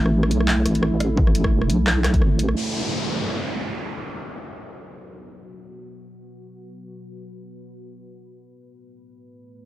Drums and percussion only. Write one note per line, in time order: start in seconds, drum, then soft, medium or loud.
0.06 cross-stick medium
0.23 cross-stick medium
0.31 closed hi-hat medium
0.40 cross-stick medium
0.48 clap loud
0.66 cross-stick medium
0.66 closed hi-hat medium
0.75 closed hi-hat soft
0.83 cross-stick medium
1.00 cross-stick medium
1.00 closed hi-hat medium
1.17 kick loud
1.27 cross-stick medium
1.35 closed hi-hat medium
1.44 kick medium
1.44 cross-stick medium
1.62 cross-stick medium
1.70 closed hi-hat medium
1.87 cross-stick medium
1.87 clap loud
2.04 cross-stick medium
2.04 clap medium
2.04 closed hi-hat medium
2.14 kick medium
2.14 closed hi-hat soft
2.22 cross-stick medium
2.39 closed hi-hat medium
2.49 cross-stick medium